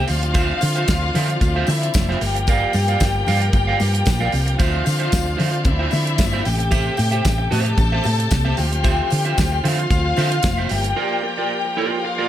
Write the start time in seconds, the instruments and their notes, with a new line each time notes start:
0.07 fingered electric bass D2, tonewheel organ F3 C4 D4, string section F4 F5, muted clean electric guitar stroke, open hi-hat, tambourine
0.22 muted clean electric guitar stroke, closed hi-hat
0.34 clean electric guitar F4 C5 E5, kick, closed hi-hat, tambourine, muted conga
0.61 fingered electric bass D3, muted clean electric guitar stroke, open hi-hat, tambourine
0.75 clean electric guitar F4 C5 E5, closed hi-hat
0.88 fingered electric bass D2, kick, snare, closed hi-hat, tambourine, high conga
1.02 muted clean electric guitar stroke
1.14 fingered electric bass D3, clean electric guitar F4 C5 E5, open hi-hat, tambourine, low conga
1.29 muted clean electric guitar stroke, closed hi-hat
1.41 fingered electric bass D2, muted clean electric guitar stroke, kick, closed hi-hat, tambourine, muted conga
1.56 clean electric guitar F4 C5 E5
1.67 fingered electric bass D3, string section E4 E5, muted clean electric guitar stroke, open hi-hat, tambourine, muted conga
1.82 muted clean electric guitar stroke, closed hi-hat
1.94 fingered electric bass F1, muted clean electric guitar stroke, kick, snare, closed hi-hat, tambourine, high conga
2.09 clean electric guitar F4 C5 E5, snare, high conga
2.21 fingered electric bass G1, tonewheel organ F3 A#3 G4, string section G4 G5, muted clean electric guitar stroke, open hi-hat, tambourine
2.35 muted clean electric guitar stroke, closed hi-hat
2.47 clean electric guitar A#4 D5 F5, kick, closed hi-hat, tambourine, muted conga
2.73 fingered electric bass G2, muted clean electric guitar stroke, open hi-hat, tambourine
2.88 clean electric guitar A#4 D5 F5, closed hi-hat
3.00 fingered electric bass G1, kick, snare, closed hi-hat, tambourine, high conga
3.15 muted clean electric guitar stroke
3.27 fingered electric bass G2, clean electric guitar A#4 D5 F5, open hi-hat, tambourine, low conga
3.41 muted clean electric guitar stroke, closed hi-hat
3.53 fingered electric bass G1, muted clean electric guitar stroke, kick, closed hi-hat, tambourine, muted conga
3.67 clean electric guitar A#4 D5 F5
3.80 fingered electric bass G2, muted clean electric guitar stroke, open hi-hat, tambourine, muted conga
3.94 muted clean electric guitar stroke, closed hi-hat
4.06 fingered electric bass A#1, muted clean electric guitar stroke, kick, snare, closed hi-hat, tambourine, high conga
4.20 clean electric guitar A#4 D5 F5, high conga
4.32 fingered electric bass C2, muted clean electric guitar stroke, open hi-hat, tambourine
4.46 muted clean electric guitar stroke, closed hi-hat
4.58 fingered electric bass D2, tonewheel organ F3 C4 D4, clean electric guitar F4 C5 E5, string section F4 F5, kick, closed hi-hat, tambourine
4.85 fingered electric bass D3, muted clean electric guitar stroke, open hi-hat, tambourine
4.99 clean electric guitar F4 C5 E5, closed hi-hat
5.12 fingered electric bass D2, kick, snare, closed hi-hat, tambourine, high conga
5.25 muted clean electric guitar stroke
5.37 fingered electric bass D3, clean electric guitar F4 C5 E5, open hi-hat, tambourine, low conga
5.52 muted clean electric guitar stroke, closed hi-hat
5.65 fingered electric bass D2, string section E4 E5, muted clean electric guitar stroke, kick, closed hi-hat, muted conga
5.79 clean electric guitar F4 C5 E5
5.91 fingered electric bass D3, muted clean electric guitar stroke, open hi-hat, tambourine, muted conga
6.06 muted clean electric guitar stroke, closed hi-hat
6.18 fingered electric bass G1, muted clean electric guitar stroke, kick, snare, closed hi-hat, tambourine, high conga
6.33 clean electric guitar F4 C5 E5, high conga
6.45 fingered electric bass A1, tonewheel organ C3 A3 G4, string section G4 G5, muted clean electric guitar stroke, open hi-hat, tambourine
6.59 muted clean electric guitar stroke, closed hi-hat
6.71 clean electric guitar G4 C5 E5, kick, closed hi-hat, tambourine, muted conga
6.97 fingered electric bass A2, muted clean electric guitar stroke, open hi-hat, tambourine
7.11 clean electric guitar G4 C5 E5, closed hi-hat
7.25 fingered electric bass A1, kick, snare, closed hi-hat, tambourine, high conga
7.38 muted clean electric guitar stroke
7.51 fingered electric bass A2, clean electric guitar G4 C5 E5, string section A4 A5, open hi-hat, tambourine, low conga
7.65 muted clean electric guitar stroke, closed hi-hat
7.78 fingered electric bass A1, muted clean electric guitar stroke, kick, closed hi-hat, tambourine, muted conga
7.92 clean electric guitar G4 C5 E5
8.03 fingered electric bass A2, muted clean electric guitar stroke, open hi-hat, tambourine, muted conga
8.19 muted clean electric guitar stroke, closed hi-hat
8.31 fingered electric bass C2, muted clean electric guitar stroke, kick, snare, closed hi-hat, tambourine, high conga
8.45 clean electric guitar G4 C5 E5, high conga
8.57 fingered electric bass D2, tonewheel organ F3 C4 F4, string section G4 G5, muted clean electric guitar stroke, open hi-hat, tambourine
8.72 muted clean electric guitar stroke, closed hi-hat
8.84 clean electric guitar F4 C5 E5, kick, closed hi-hat, tambourine, muted conga
9.10 fingered electric bass D3, muted clean electric guitar stroke, open hi-hat, tambourine
9.25 clean electric guitar F4 C5 E5, closed hi-hat
9.38 fingered electric bass D2, kick, snare, closed hi-hat, tambourine, high conga
9.52 muted clean electric guitar stroke
9.64 fingered electric bass D3, clean electric guitar F4 C5 E5, string section F4 F5, open hi-hat, tambourine, low conga
9.79 muted clean electric guitar stroke, closed hi-hat
9.90 fingered electric bass D2, kick, closed hi-hat, tambourine, muted conga
10.05 muted clean electric guitar stroke
10.17 fingered electric bass D3, clean electric guitar F4 C5 E5, open hi-hat, tambourine, muted conga
10.31 muted clean electric guitar stroke, closed hi-hat
10.43 fingered electric bass F1, muted clean electric guitar stroke, kick, snare, closed hi-hat, tambourine, high conga
10.58 clean electric guitar F4 C5 E5, high conga
10.69 fingered electric bass G1, tonewheel organ F3 A#3 G4, string section G4 G5, muted clean electric guitar stroke, open hi-hat, tambourine
10.84 muted clean electric guitar stroke, closed hi-hat
10.96 clean electric guitar F4 A#4 D5
11.23 muted clean electric guitar stroke
11.38 clean electric guitar F4 A#4 D5
11.65 muted clean electric guitar stroke
11.77 clean electric guitar F4 A#4 D5
11.91 muted clean electric guitar stroke
12.03 string section F4 F5, muted clean electric guitar stroke
12.18 clean electric guitar F4 A#4 D5